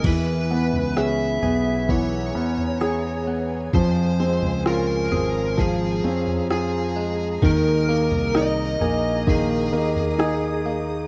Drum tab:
CC |x---------------|----------------|----------------|
SD |----r-------r---|----r-------r---|----r-------r---|
FT |o--o--o-o--o----|o--o--o-o--o----|o--o--o-o--o----|
BD |o-------o-------|o-------o-------|o-------o-------|